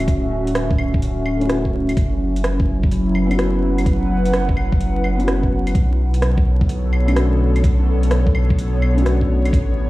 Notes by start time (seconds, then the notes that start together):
Already playing: D1 D3 A3 C#4 E4 F#4 E5
0.08 kick, closed hi-hat
0.47 closed hi-hat
0.55 cross-stick, closed hi-hat
0.71 kick
0.78 claves
0.94 kick
1.02 closed hi-hat
1.26 claves
1.37 A3 C#4
1.41 E4, closed hi-hat
1.45 F#4
1.50 cross-stick, closed hi-hat
1.65 kick
1.89 closed hi-hat, claves
1.97 F#1 F#3, kick, closed hi-hat
2.34 E4, closed hi-hat
2.44 cross-stick, closed hi-hat
2.60 kick
2.83 kick
2.92 closed hi-hat
3.03 B4
3.15 claves
3.27 B3 C#4
3.31 E4 F#4 F#5, closed hi-hat, claves
3.39 cross-stick, closed hi-hat
3.78 closed hi-hat, claves
3.86 kick, closed hi-hat
4.25 closed hi-hat
4.33 cross-stick, closed hi-hat
4.49 kick
4.57 claves
4.72 kick
4.81 closed hi-hat
5.04 claves
5.15 B3 C#4
5.20 E4 F#4, closed hi-hat
5.28 cross-stick, closed hi-hat
5.43 kick
5.67 closed hi-hat, claves
5.75 B1 B2, kick, closed hi-hat
6.08 B3
6.14 C#5, closed hi-hat
6.19 D3 A4, cross-stick, closed hi-hat
6.38 kick
6.61 kick
6.69 closed hi-hat
6.93 claves
7.05 A3 C#4, closed hi-hat, claves
7.10 D4 F#4
7.16 cross-stick, closed hi-hat
7.56 closed hi-hat, claves
7.64 kick, closed hi-hat
8.03 closed hi-hat
8.11 cross-stick, closed hi-hat
8.27 kick
8.35 claves
8.50 kick
8.59 closed hi-hat
8.82 claves
8.94 A3 C#4
8.98 D4 F#4, closed hi-hat
9.06 cross-stick, closed hi-hat
9.21 kick
9.45 closed hi-hat, claves
9.53 A1 A2, kick, closed hi-hat
9.63 A3